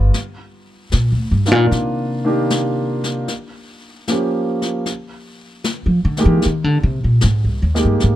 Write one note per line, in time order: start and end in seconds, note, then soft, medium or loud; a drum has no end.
0.00 0.15 D#3 medium
0.00 0.11 G3 soft
0.00 0.14 B3 soft
0.00 0.16 F4 medium
0.14 brush sweep soft
0.14 snare soft
0.92 1.11 A#2 medium
0.92 snare soft
1.12 1.31 D2 soft
1.31 1.51 G2 medium
1.46 1.69 D#3 soft
1.46 1.69 A#3 soft
1.46 1.70 D4 soft
1.46 1.69 F4 medium
1.46 snare soft
1.51 1.67 A#2 medium
1.71 3.25 C3 medium
1.71 brush sweep soft
1.71 snare soft
2.25 2.47 D#3 medium
2.25 2.48 A#3 soft
2.25 2.48 D4 soft
2.25 2.48 G4 medium
2.50 snare medium
3.04 snare soft
3.28 brush sweep soft
3.28 snare soft
4.08 4.86 F3 soft
4.08 4.87 A#3 soft
4.08 4.87 C#4 soft
4.08 4.87 G4 soft
4.08 snare soft
4.62 snare soft
4.86 brush sweep soft
4.86 snare soft
5.64 snare medium
5.86 6.04 F3 medium
6.05 6.23 D3 medium
6.17 6.41 D#3 medium
6.17 6.41 G#3 soft
6.17 6.41 A#3 soft
6.17 6.42 G4 medium
6.17 snare soft
6.26 6.40 E3 medium
6.42 brush sweep soft
6.42 snare soft
6.46 6.64 D#3 medium
6.64 6.83 D3 medium
6.83 7.02 C3 medium
7.04 7.19 A#2 medium
7.21 7.44 G#2 medium
7.21 snare medium
7.44 7.62 C2 soft
7.62 7.81 D#2 medium
7.74 7.98 D#3 soft
7.74 7.98 G#3 soft
7.74 7.98 A#3 soft
7.74 7.98 G4 medium
7.74 snare soft
7.85 7.99 G2 medium
8.00 8.16 G#2 medium
8.00 brush sweep soft
8.00 snare soft